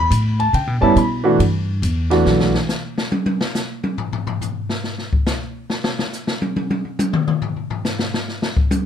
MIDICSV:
0, 0, Header, 1, 4, 480
1, 0, Start_track
1, 0, Tempo, 430108
1, 605, Time_signature, 4, 2, 24, 8
1, 9884, End_track
2, 0, Start_track
2, 0, Title_t, "Grand piano"
2, 0, Program_c, 0, 0
2, 0, Note_on_c, 0, 83, 109
2, 415, Note_off_c, 0, 83, 0
2, 442, Note_on_c, 0, 81, 75
2, 601, Note_off_c, 0, 81, 0
2, 610, Note_on_c, 0, 79, 63
2, 903, Note_on_c, 0, 55, 72
2, 911, Note_on_c, 0, 59, 61
2, 911, Note_on_c, 0, 81, 76
2, 914, Note_off_c, 0, 79, 0
2, 917, Note_on_c, 0, 61, 66
2, 924, Note_on_c, 0, 64, 80
2, 1060, Note_off_c, 0, 55, 0
2, 1064, Note_off_c, 0, 59, 0
2, 1067, Note_off_c, 0, 61, 0
2, 1070, Note_off_c, 0, 64, 0
2, 1075, Note_off_c, 0, 81, 0
2, 1089, Note_on_c, 0, 83, 76
2, 1380, Note_on_c, 0, 52, 72
2, 1384, Note_on_c, 0, 57, 65
2, 1393, Note_on_c, 0, 62, 63
2, 1397, Note_on_c, 0, 66, 74
2, 1534, Note_off_c, 0, 83, 0
2, 1538, Note_off_c, 0, 52, 0
2, 1541, Note_off_c, 0, 57, 0
2, 1545, Note_off_c, 0, 62, 0
2, 1547, Note_off_c, 0, 66, 0
2, 2346, Note_on_c, 0, 52, 68
2, 2350, Note_on_c, 0, 57, 64
2, 2354, Note_on_c, 0, 62, 61
2, 2362, Note_on_c, 0, 66, 70
2, 2834, Note_off_c, 0, 52, 0
2, 2836, Note_off_c, 0, 57, 0
2, 2838, Note_off_c, 0, 62, 0
2, 2842, Note_off_c, 0, 66, 0
2, 9884, End_track
3, 0, Start_track
3, 0, Title_t, "Upright bass"
3, 0, Program_c, 1, 32
3, 118, Note_on_c, 1, 45, 91
3, 587, Note_off_c, 1, 45, 0
3, 594, Note_on_c, 1, 49, 81
3, 752, Note_off_c, 1, 49, 0
3, 752, Note_on_c, 1, 47, 58
3, 909, Note_off_c, 1, 47, 0
3, 916, Note_on_c, 1, 43, 66
3, 1065, Note_off_c, 1, 43, 0
3, 1072, Note_on_c, 1, 47, 85
3, 1544, Note_off_c, 1, 47, 0
3, 1555, Note_on_c, 1, 43, 76
3, 2026, Note_off_c, 1, 43, 0
3, 2033, Note_on_c, 1, 40, 80
3, 2505, Note_off_c, 1, 40, 0
3, 2514, Note_on_c, 1, 35, 71
3, 2826, Note_off_c, 1, 35, 0
3, 9884, End_track
4, 0, Start_track
4, 0, Title_t, "Drums"
4, 127, Note_on_c, 9, 44, 58
4, 127, Note_on_c, 9, 51, 75
4, 239, Note_off_c, 9, 44, 0
4, 239, Note_off_c, 9, 51, 0
4, 443, Note_on_c, 9, 51, 37
4, 555, Note_off_c, 9, 51, 0
4, 603, Note_on_c, 9, 51, 59
4, 715, Note_off_c, 9, 51, 0
4, 1077, Note_on_c, 9, 44, 50
4, 1077, Note_on_c, 9, 51, 57
4, 1188, Note_off_c, 9, 44, 0
4, 1188, Note_off_c, 9, 51, 0
4, 1563, Note_on_c, 9, 51, 68
4, 1674, Note_off_c, 9, 51, 0
4, 2042, Note_on_c, 9, 44, 58
4, 2042, Note_on_c, 9, 51, 69
4, 2154, Note_off_c, 9, 44, 0
4, 2154, Note_off_c, 9, 51, 0
4, 2354, Note_on_c, 9, 38, 50
4, 2356, Note_on_c, 9, 51, 42
4, 2465, Note_off_c, 9, 38, 0
4, 2467, Note_off_c, 9, 51, 0
4, 2517, Note_on_c, 9, 38, 90
4, 2628, Note_off_c, 9, 38, 0
4, 2680, Note_on_c, 9, 38, 97
4, 2791, Note_off_c, 9, 38, 0
4, 2838, Note_on_c, 9, 38, 89
4, 2950, Note_off_c, 9, 38, 0
4, 3001, Note_on_c, 9, 38, 84
4, 3003, Note_on_c, 9, 44, 50
4, 3112, Note_off_c, 9, 38, 0
4, 3115, Note_off_c, 9, 44, 0
4, 3322, Note_on_c, 9, 38, 90
4, 3434, Note_off_c, 9, 38, 0
4, 3479, Note_on_c, 9, 48, 100
4, 3591, Note_off_c, 9, 48, 0
4, 3637, Note_on_c, 9, 48, 94
4, 3749, Note_off_c, 9, 48, 0
4, 3802, Note_on_c, 9, 38, 91
4, 3914, Note_off_c, 9, 38, 0
4, 3961, Note_on_c, 9, 38, 96
4, 3963, Note_on_c, 9, 44, 62
4, 4072, Note_off_c, 9, 38, 0
4, 4075, Note_off_c, 9, 44, 0
4, 4281, Note_on_c, 9, 48, 83
4, 4392, Note_off_c, 9, 48, 0
4, 4440, Note_on_c, 9, 43, 96
4, 4552, Note_off_c, 9, 43, 0
4, 4606, Note_on_c, 9, 43, 101
4, 4718, Note_off_c, 9, 43, 0
4, 4764, Note_on_c, 9, 43, 101
4, 4876, Note_off_c, 9, 43, 0
4, 4925, Note_on_c, 9, 43, 89
4, 4927, Note_on_c, 9, 44, 50
4, 5037, Note_off_c, 9, 43, 0
4, 5039, Note_off_c, 9, 44, 0
4, 5240, Note_on_c, 9, 38, 82
4, 5351, Note_off_c, 9, 38, 0
4, 5400, Note_on_c, 9, 38, 56
4, 5512, Note_off_c, 9, 38, 0
4, 5561, Note_on_c, 9, 38, 43
4, 5672, Note_off_c, 9, 38, 0
4, 5721, Note_on_c, 9, 36, 73
4, 5833, Note_off_c, 9, 36, 0
4, 5876, Note_on_c, 9, 38, 100
4, 5879, Note_on_c, 9, 44, 55
4, 5988, Note_off_c, 9, 38, 0
4, 5990, Note_off_c, 9, 44, 0
4, 6358, Note_on_c, 9, 38, 84
4, 6469, Note_off_c, 9, 38, 0
4, 6519, Note_on_c, 9, 38, 101
4, 6630, Note_off_c, 9, 38, 0
4, 6684, Note_on_c, 9, 38, 97
4, 6796, Note_off_c, 9, 38, 0
4, 6838, Note_on_c, 9, 38, 34
4, 6841, Note_on_c, 9, 44, 45
4, 6950, Note_off_c, 9, 38, 0
4, 6952, Note_off_c, 9, 44, 0
4, 7002, Note_on_c, 9, 38, 98
4, 7113, Note_off_c, 9, 38, 0
4, 7161, Note_on_c, 9, 48, 86
4, 7273, Note_off_c, 9, 48, 0
4, 7324, Note_on_c, 9, 48, 98
4, 7436, Note_off_c, 9, 48, 0
4, 7482, Note_on_c, 9, 48, 91
4, 7594, Note_off_c, 9, 48, 0
4, 7643, Note_on_c, 9, 48, 42
4, 7755, Note_off_c, 9, 48, 0
4, 7801, Note_on_c, 9, 48, 114
4, 7803, Note_on_c, 9, 44, 59
4, 7913, Note_off_c, 9, 48, 0
4, 7915, Note_off_c, 9, 44, 0
4, 7960, Note_on_c, 9, 47, 98
4, 8072, Note_off_c, 9, 47, 0
4, 8118, Note_on_c, 9, 47, 81
4, 8230, Note_off_c, 9, 47, 0
4, 8278, Note_on_c, 9, 43, 94
4, 8389, Note_off_c, 9, 43, 0
4, 8440, Note_on_c, 9, 43, 40
4, 8551, Note_off_c, 9, 43, 0
4, 8597, Note_on_c, 9, 43, 88
4, 8708, Note_off_c, 9, 43, 0
4, 8759, Note_on_c, 9, 38, 96
4, 8761, Note_on_c, 9, 44, 54
4, 8870, Note_off_c, 9, 38, 0
4, 8873, Note_off_c, 9, 44, 0
4, 8919, Note_on_c, 9, 38, 101
4, 9031, Note_off_c, 9, 38, 0
4, 9084, Note_on_c, 9, 38, 91
4, 9196, Note_off_c, 9, 38, 0
4, 9244, Note_on_c, 9, 38, 45
4, 9356, Note_off_c, 9, 38, 0
4, 9400, Note_on_c, 9, 38, 96
4, 9512, Note_off_c, 9, 38, 0
4, 9560, Note_on_c, 9, 36, 83
4, 9671, Note_off_c, 9, 36, 0
4, 9718, Note_on_c, 9, 48, 111
4, 9720, Note_on_c, 9, 44, 67
4, 9830, Note_off_c, 9, 48, 0
4, 9832, Note_off_c, 9, 44, 0
4, 9884, End_track
0, 0, End_of_file